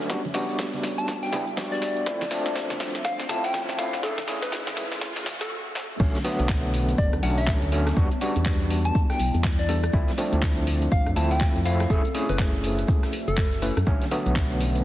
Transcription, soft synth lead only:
0.98 A5
1.23 G5
1.72 D5
3.05 F5
3.29 A5
3.44 G5
3.78 F5
4.03 A4
4.42 B4
5.41 A4
6.98 D5
7.23 F#5
7.38 E5
8.85 A5
9.10 G5
9.59 D5
10.92 F5
11.16 A5
11.31 G5
11.65 F5
11.90 A4
12.29 B4
13.28 A4

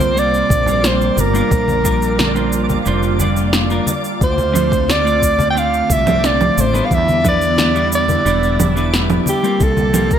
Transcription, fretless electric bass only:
Already playing: C2
0.50 A#1
1.17 G1
1.51 A#1
2.86 F1
4.21 D2
5.90 C2
6.57 A1
6.91 E2
8.25 E1
9.60 C2

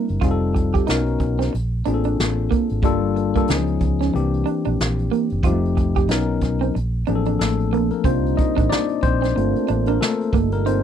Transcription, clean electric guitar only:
0.21 F4
0.55 muted clean electric guitar stroke
0.74 G4
0.87 D#4
1.20 muted clean electric guitar stroke
1.39 C4
1.53 muted clean electric guitar stroke
1.85 D4
2.05 D4
2.51 A#3
2.84 G3
3.16 muted clean electric guitar stroke
3.36 A#3
3.49 D4
3.81 muted clean electric guitar stroke
4.01 C#4
4.14 muted clean electric guitar stroke
4.46 D4
4.65 D4
5.11 A#3
5.44 F4
5.77 muted clean electric guitar stroke
5.96 G4
6.09 D#4
6.43 muted clean electric guitar stroke
6.61 C4
6.75 muted clean electric guitar stroke
7.07 D4
7.27 D4
7.73 A#3
8.05 C4
8.38 muted clean electric guitar stroke
8.57 D4
8.70 D#4
9.03 muted clean electric guitar stroke
9.22 C4
9.36 muted clean electric guitar stroke
9.69 D4
9.88 D4
10.34 A#3
10.66 D#4

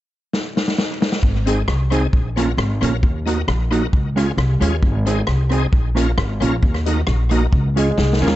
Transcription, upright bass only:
1.23 G#1
1.68 C2
2.13 A#1
2.57 G#1
2.81 A#1
3.03 D#2
3.48 A#1
3.93 C#2
4.37 C2
4.61 D#2
4.83 G#1
5.27 C2
5.73 A#1
6.17 G#1
6.41 A#1
6.62 D#2
7.07 A#1
7.53 C#2
7.98 C2
8.21 D#2

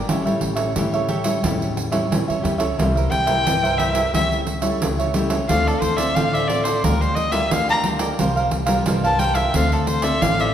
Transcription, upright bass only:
0.09 A1
0.41 A1
0.76 A2
1.43 E2
2.11 A#1
2.29 G2
2.44 E2
2.59 C#2
2.79 C2
3.11 C2
3.46 C2
4.13 C#2
4.81 C#2
5.49 D2
5.81 D2
6.17 D3
6.84 D2
7.52 D2
8.19 C2
8.51 C2
8.86 C2
9.54 D2
10.21 A1

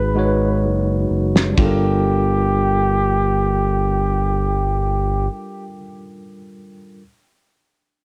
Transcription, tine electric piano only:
Already playing: G#3 D#4 F#4 G#4 B4
0.15 G#3 D#4 F#4 B4
0.19 C#5
1.50 G3
1.54 D4 F4
1.62 A4
1.66 A#4

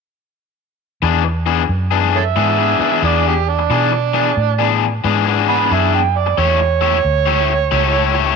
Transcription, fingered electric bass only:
1.02 E2
1.69 F#2
2.36 G#2
2.79 muted fingered electric bass stroke
3.02 E2
3.70 B2
4.37 A2
5.04 G#2
5.71 F#2
6.38 E2
7.04 D2
7.72 C#2

